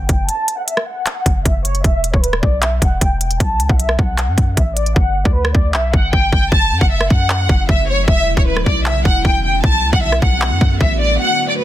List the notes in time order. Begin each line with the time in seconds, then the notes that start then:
0.09 F#1 G5, kick, closed hi-hat
0.29 A5, closed hi-hat
0.48 closed hi-hat
0.58 F#5
0.68 E5, closed hi-hat
0.77 cross-stick
0.87 F#5
1.06 clap, closed hi-hat
1.26 F#1, kick, closed hi-hat
1.45 F#1 E5, kick, closed hi-hat
1.65 C#5, closed hi-hat
1.75 closed hi-hat
1.84 E1 E5, kick, closed hi-hat
2.04 closed hi-hat
2.13 D1 C#5, kick
2.23 B4, closed hi-hat
2.33 cross-stick
2.43 B1 D5, kick
2.62 E5, clap, closed hi-hat
2.82 E1 F#5, kick, closed hi-hat
3.01 E1 G5, kick, closed hi-hat
3.21 G5, closed hi-hat
3.31 closed hi-hat
3.40 B1 A5, kick, closed hi-hat
3.60 C#2, closed hi-hat
3.69 B1 F#5, kick
3.79 E5, closed hi-hat
3.89 cross-stick
3.99 B1 F#5, kick
4.18 clap, closed hi-hat
4.28 F#2
4.38 F#2, kick, closed hi-hat
4.57 A1 E5, kick, closed hi-hat
4.77 D5, closed hi-hat
4.86 closed hi-hat
4.96 G1 F#5, kick
5.25 D2 D5, kick
5.35 B4
5.45 cross-stick
5.55 D2 D5, kick
5.74 B1 E5, clap
5.93 G1 F#5, kick
6.13 G1 G5, kick
6.32 G1 G5, kick
6.52 F#1 E4 A5, kick
6.72 F#2
6.81 F#1 F#5, kick
6.91 E5
7.01 cross-stick
7.10 F#2 F#5, kick
7.30 clap
7.49 F#1, kick
7.69 F#1 E5, kick
7.88 C#5
8.08 E1 D3 B3 E5, kick
8.37 D1 C#5, kick
8.47 B4
8.57 cross-stick
8.66 B1 D5, kick
8.86 E5, clap
9.05 E1 F#5, kick
9.25 E1 G5, kick
9.44 G5
9.63 B1 A5, kick
9.83 C#2
9.93 B1 F#5, kick
10.02 E5
10.12 cross-stick
10.22 B1 F#5, kick
10.42 clap
10.51 F#2
10.61 F#2, kick
10.80 A1 E5, kick
11.00 D5
11.20 F#5
11.49 D5
11.58 B4